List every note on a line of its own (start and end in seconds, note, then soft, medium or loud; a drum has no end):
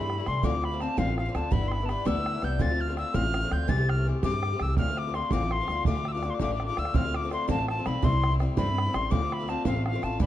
0.00 0.18 G2 medium
0.00 0.20 G3 soft
0.00 0.18 A3 soft
0.00 0.17 E4 medium
0.00 0.29 B5 loud
0.10 bodhran medium
0.18 0.27 G3 soft
0.18 0.28 A3 medium
0.18 0.27 E4 medium
0.26 0.40 C2 medium
0.26 0.44 E3 medium
0.26 0.44 G3 medium
0.26 0.44 A3 medium
0.26 0.45 E4 medium
0.26 0.46 C6 loud
0.26 bodhran medium
0.43 0.54 D2 medium
0.43 0.85 D2 loud
0.43 0.54 A2 medium
0.43 0.54 D3 medium
0.43 0.53 A3 medium
0.43 0.54 C4 medium
0.43 0.52 F4 medium
0.43 0.66 D6 loud
0.43 bodhran medium
0.53 0.73 D3 soft
0.53 0.71 A3 soft
0.53 0.72 C4 soft
0.53 0.70 F4 medium
0.64 0.83 B5 loud
0.64 bodhran medium
0.71 0.79 D3 soft
0.71 0.81 A3 medium
0.71 0.80 C4 soft
0.71 0.80 F4 medium
0.80 0.96 D3 medium
0.80 0.98 A3 medium
0.80 0.97 C4 medium
0.80 0.98 F4 medium
0.80 0.99 A5 loud
0.80 bodhran soft
0.97 1.27 A1 loud
0.97 1.08 D2 medium
0.97 1.08 A2 medium
0.97 1.08 D3 medium
0.97 1.07 A3 medium
0.97 1.08 C4 medium
0.97 1.06 F4 medium
0.97 1.18 F5 loud
0.97 bodhran medium
1.07 1.28 D3 soft
1.07 1.26 A3 soft
1.07 1.27 C4 soft
1.07 1.25 F4 soft
1.07 bodhran soft
1.18 1.37 F5 medium
1.18 bodhran medium
1.26 1.33 D3 soft
1.26 1.35 A3 medium
1.26 1.35 C4 soft
1.26 1.35 F4 medium
1.35 1.48 D2 medium
1.35 1.50 D3 medium
1.35 1.52 A3 medium
1.35 1.51 C4 medium
1.35 1.53 F4 medium
1.35 1.53 A5 loud
1.35 bodhran medium
1.51 1.94 G1 medium
1.51 1.62 G3 medium
1.51 1.62 B3 medium
1.51 1.62 D4 medium
1.51 1.60 E4 loud
1.51 1.69 B5 loud
1.51 bodhran medium
1.61 1.82 B3 soft
1.61 1.81 D4 soft
1.61 1.79 E4 medium
1.68 1.87 B5 loud
1.68 1.73 C6 medium
1.68 bodhran medium
1.80 1.88 B3 soft
1.80 1.89 D4 soft
1.80 1.89 E4 soft
1.85 2.04 G3 medium
1.85 1.90 A5 medium
1.85 2.08 B5 loud
1.85 bodhran medium
1.90 2.05 B3 medium
1.90 2.06 D4 medium
1.90 2.06 E4 medium
2.05 2.34 D2 medium
2.05 2.16 G3 medium
2.05 2.16 B3 medium
2.05 2.16 D4 medium
2.05 2.14 E4 medium
2.05 2.46 E6 loud
2.05 bodhran medium
2.16 2.36 B3 soft
2.16 2.33 E4 medium
2.16 bodhran soft
2.26 bodhran medium
2.34 2.42 B3 soft
2.34 2.42 D4 soft
2.34 2.43 E4 medium
2.42 2.56 C2 medium
2.42 2.60 G3 medium
2.42 2.60 B3 medium
2.42 2.61 D4 medium
2.42 2.61 E4 medium
2.42 2.63 G6 loud
2.42 bodhran medium
2.59 2.70 D2 medium
2.59 3.02 D2 loud
2.59 2.70 A2 medium
2.59 2.70 D3 medium
2.59 2.70 A3 medium
2.59 2.71 C4 medium
2.59 2.69 F4 medium
2.59 2.82 A6 loud
2.59 bodhran medium
2.70 2.91 D3 soft
2.70 2.88 A3 soft
2.70 2.89 C4 soft
2.70 2.87 F4 medium
2.80 2.97 F6 loud
2.88 2.96 D3 soft
2.88 2.98 A3 medium
2.88 2.97 C4 soft
2.88 2.97 F4 medium
2.97 3.14 D3 medium
2.97 3.14 A3 medium
2.97 3.14 C4 medium
2.97 3.15 F4 medium
2.97 3.16 E6 loud
2.97 bodhran medium
3.14 3.43 A1 loud
3.14 3.24 D2 medium
3.14 3.25 A2 medium
3.14 3.25 D3 medium
3.14 3.24 A3 medium
3.14 3.25 C4 medium
3.14 3.22 F4 medium
3.14 3.54 F6 loud
3.14 bodhran medium
3.24 3.43 D3 soft
3.24 3.42 A3 soft
3.24 3.43 C4 soft
3.24 3.40 F4 soft
3.24 bodhran soft
3.34 bodhran medium
3.41 3.49 D3 soft
3.41 3.52 A3 soft
3.41 3.51 C4 medium
3.41 3.51 F4 soft
3.51 3.65 D2 medium
3.51 3.68 D3 soft
3.51 3.68 A3 medium
3.51 3.68 C4 medium
3.51 3.69 F4 medium
3.51 3.70 G6 loud
3.51 bodhran medium
3.67 4.11 C2 loud
3.67 3.78 C3 medium
3.67 3.79 E3 medium
3.67 3.78 A3 medium
3.67 3.79 C4 medium
3.67 3.76 G4 medium
3.67 3.90 A6 loud
3.67 bodhran medium
3.77 3.97 A3 soft
3.77 3.99 C4 soft
3.77 3.95 G4 medium
3.89 4.06 F6 loud
3.89 bodhran medium
3.97 4.07 A3 soft
3.97 4.06 C4 soft
3.97 4.06 G4 medium
4.06 4.22 E3 soft
4.06 4.23 A3 medium
4.06 4.23 C4 soft
4.06 4.24 G4 medium
4.23 4.52 G2 medium
4.23 4.33 C3 medium
4.23 4.33 E3 medium
4.23 4.34 A3 medium
4.23 4.34 C4 medium
4.23 4.32 G4 medium
4.23 4.63 D6 loud
4.23 bodhran medium
4.33 4.53 A3 soft
4.33 4.51 G4 medium
4.33 bodhran soft
4.37 4.54 C4 soft
4.43 bodhran medium
4.52 4.62 A3 soft
4.52 4.60 C4 soft
4.52 4.61 G4 medium
4.60 4.74 C2 medium
4.60 4.77 E3 soft
4.60 4.78 A3 medium
4.60 4.78 C4 medium
4.60 4.77 E6 medium
4.60 bodhran medium
4.64 4.79 G4 medium
4.77 5.19 D2 medium
4.77 4.88 D2 medium
4.77 4.88 A2 medium
4.77 4.88 D3 medium
4.77 4.88 A3 medium
4.77 4.88 C4 medium
4.77 4.87 F4 medium
4.77 4.99 F6 loud
4.77 bodhran loud
4.88 5.08 D3 soft
4.88 5.06 A3 soft
4.88 5.08 C4 soft
4.88 5.05 F4 medium
4.97 5.16 D6 medium
4.97 bodhran medium
5.06 5.13 D3 soft
5.06 5.15 A3 medium
5.06 5.15 C4 soft
5.06 5.15 F4 medium
5.14 5.32 D3 medium
5.14 5.33 A3 medium
5.14 5.32 C4 soft
5.14 5.33 F4 medium
5.14 5.33 C6 loud
5.14 bodhran medium
5.31 5.60 A1 medium
5.31 5.42 D2 medium
5.31 5.42 A2 medium
5.31 5.42 D3 medium
5.31 5.42 A3 medium
5.31 5.43 C4 medium
5.31 5.41 F4 loud
5.31 5.53 D6 loud
5.31 bodhran medium
5.41 5.61 A3 soft
5.41 5.62 C4 soft
5.41 5.60 F4 soft
5.41 bodhran soft
5.45 5.62 D3 soft
5.51 5.86 C6 loud
5.51 bodhran medium
5.61 5.68 D3 soft
5.61 5.70 A3 medium
5.61 5.69 C4 soft
5.61 5.69 F4 medium
5.68 5.82 D2 medium
5.68 5.86 D3 medium
5.68 5.86 A3 medium
5.68 5.87 C4 medium
5.68 bodhran medium
5.72 5.87 F4 medium
5.85 6.28 D2 loud
5.85 5.96 D2 medium
5.85 5.96 A2 medium
5.85 5.97 D3 medium
5.85 5.96 A3 medium
5.85 5.95 D4 medium
5.85 5.94 F4 medium
5.85 6.09 D6 medium
5.85 bodhran medium
5.95 6.16 D3 soft
5.95 6.15 A3 soft
5.95 6.15 D4 medium
5.95 6.13 F4 soft
6.05 6.13 E6 medium
6.05 bodhran medium
6.12 6.23 F4 medium
6.12 6.31 D6 medium
6.16 6.21 D3 soft
6.16 6.22 A3 medium
6.16 6.24 D4 medium
6.22 6.40 D3 medium
6.22 6.40 A3 medium
6.22 6.40 D4 soft
6.22 6.41 F4 medium
6.22 bodhran medium
6.30 6.36 C6 medium
6.34 6.40 D6 medium
6.39 6.69 A1 medium
6.39 6.50 D2 medium
6.39 6.50 A2 medium
6.39 6.51 D3 medium
6.39 6.51 A3 medium
6.39 6.50 D4 medium
6.39 6.49 F4 medium
6.39 6.53 D6 medium
6.39 bodhran medium
6.50 6.71 D3 soft
6.50 6.70 D4 soft
6.50 6.68 F4 soft
6.50 6.65 D6 medium
6.50 bodhran soft
6.60 bodhran medium
6.66 6.78 F4 medium
6.66 6.80 D6 loud
6.71 6.76 D3 soft
6.71 6.77 A3 medium
6.71 6.78 D4 soft
6.77 6.91 D2 medium
6.77 6.94 D3 medium
6.77 6.94 A3 medium
6.77 6.95 D4 medium
6.77 6.95 F4 medium
6.77 6.97 E6 medium
6.77 bodhran medium
6.85 bodhran medium
6.94 7.04 D2 medium
6.94 7.36 D2 medium
6.94 7.04 A2 medium
6.94 7.05 D3 medium
6.94 7.04 A3 medium
6.94 7.05 C4 medium
6.94 7.03 F4 medium
6.94 7.17 F6 loud
6.94 bodhran medium
7.04 7.25 D3 soft
7.04 7.23 A3 medium
7.04 7.24 C4 soft
7.04 7.21 F4 medium
7.14 7.32 D6 medium
7.14 bodhran medium
7.22 7.29 D3 soft
7.22 7.31 A3 medium
7.22 7.31 C4 medium
7.22 7.31 F4 medium
7.31 7.47 D3 medium
7.31 7.49 A3 medium
7.31 7.48 C4 medium
7.31 7.49 F4 medium
7.31 7.48 C6 loud
7.31 bodhran medium
7.48 7.77 A1 medium
7.48 7.58 D2 medium
7.48 7.59 A2 medium
7.48 7.59 D3 medium
7.48 7.58 A3 medium
7.48 7.59 C4 medium
7.48 7.57 F4 medium
7.48 7.68 A5 loud
7.48 bodhran medium
7.58 7.79 D3 soft
7.58 7.78 A3 soft
7.58 7.78 C4 soft
7.58 7.76 F4 medium
7.58 bodhran soft
7.68 7.88 A5 medium
7.68 bodhran medium
7.77 7.84 D3 soft
7.77 7.87 A3 medium
7.77 7.86 C4 medium
7.77 7.86 F4 medium
7.85 7.99 B1 medium
7.85 8.03 D3 medium
7.85 8.03 A3 medium
7.85 8.03 C4 medium
7.85 8.04 F4 medium
7.85 8.05 B5 medium
7.85 bodhran medium
8.02 8.45 C2 loud
8.02 8.13 C3 medium
8.02 8.13 G3 medium
8.02 8.13 A3 medium
8.02 8.14 C4 medium
8.02 8.11 E4 medium
8.02 8.33 C6 loud
8.02 bodhran loud
8.12 8.31 A3 soft
8.12 8.33 C4 soft
8.12 8.30 E4 medium
8.24 bodhran medium
8.31 8.40 A3 soft
8.31 8.40 C4 soft
8.31 8.40 E4 medium
8.39 8.56 G3 medium
8.39 8.58 A3 medium
8.39 8.57 C4 medium
8.39 8.58 E4 medium
8.39 bodhran medium
8.57 8.86 G2 loud
8.57 8.67 C3 medium
8.57 8.67 G3 medium
8.57 8.67 A3 medium
8.57 8.68 C4 medium
8.57 8.65 E4 medium
8.57 8.96 B5 loud
8.57 bodhran medium
8.67 8.86 A3 soft
8.67 8.87 C4 soft
8.67 8.84 E4 soft
8.67 bodhran soft
8.78 bodhran medium
8.85 8.94 A3 medium
8.85 8.93 C4 soft
8.85 8.94 E4 medium
8.93 9.07 A1 medium
8.93 9.11 G3 medium
8.93 9.11 A3 medium
8.93 9.10 C4 medium
8.93 9.12 E4 medium
8.93 9.12 C6 loud
8.93 bodhran medium
9.10 9.21 D2 medium
9.10 9.53 D2 medium
9.10 9.21 A2 medium
9.10 9.22 D3 medium
9.10 9.22 A3 medium
9.10 9.22 C4 medium
9.10 9.20 F4 medium
9.10 9.34 D6 loud
9.10 bodhran medium
9.22 9.41 D3 soft
9.22 9.39 A3 soft
9.22 9.40 C4 soft
9.22 9.38 F4 medium
9.32 9.50 B5 loud
9.32 bodhran medium
9.39 9.47 D3 soft
9.39 9.49 A3 medium
9.39 9.48 C4 soft
9.39 9.48 F4 soft
9.48 9.65 D3 medium
9.48 9.66 A3 medium
9.48 9.66 C4 medium
9.48 9.67 F4 medium
9.48 9.65 A5 medium
9.48 bodhran medium
9.65 9.95 A1 loud
9.65 9.76 D2 medium
9.65 9.76 A2 medium
9.65 9.76 D3 medium
9.65 9.74 A3 medium
9.65 9.75 C4 medium
9.65 9.73 F4 medium
9.65 9.85 F5 medium
9.65 bodhran medium
9.75 9.95 D3 soft
9.75 9.93 A3 soft
9.75 9.94 C4 soft
9.75 9.92 F4 soft
9.75 bodhran soft
9.86 10.05 F5 loud
9.86 bodhran medium
9.93 10.01 D3 soft
9.93 10.03 A3 soft
9.93 10.02 C4 medium
9.93 10.02 F4 medium
10.02 10.16 A1 medium
10.02 10.19 D3 medium
10.02 10.21 A3 medium
10.02 10.20 C4 medium
10.02 10.21 F4 medium
10.02 10.20 A5 medium
10.02 bodhran medium
10.20 10.26 G1 loud
10.20 10.26 G2 medium
10.20 10.26 D3 medium
10.20 10.26 E3 medium
10.20 10.26 G3 medium
10.20 10.26 B3 medium
10.20 10.26 D4 medium
10.20 10.26 B5 loud
10.20 bodhran loud